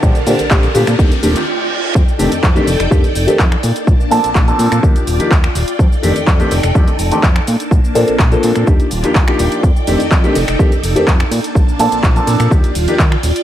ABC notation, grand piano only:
X:1
M:4/4
L:1/16
Q:1/4=125
K:Fmix
V:1 name="Grand piano"
[D,A,CDG] z [D,A,CDG] z [D,A,CDG] z [D,A,CDG] z [E,A,CDG] z [E,A,CDG] z4 z | z2 [E,A,CDG] z2 [E,A,CDG] z2 [E,A,CDG] z2 [E,A,CDG] z4 | z2 [F,B,CDA] z2 [F,B,CDA]3 [F,B,G] z2 [F,B,DEG] z4 | z2 [E,A,CDG] z2 [E,A,CDG] z2 [E,A,CDG] z2 [E,A,CDG] z4 |
z2 [F,B,CDA] z2 [F,B,CDA]3 [F,B,DEG] z2 [F,B,DEG] z [F,B,DEG]3 | z2 [E,A,CDG] z2 [E,A,CDG] z2 [E,A,CDG] z2 [E,A,CDG] z4 | z2 [F,B,CDA] z2 [F,B,CDA]3 [F,G] z2 [F,B,DEG] z4 |]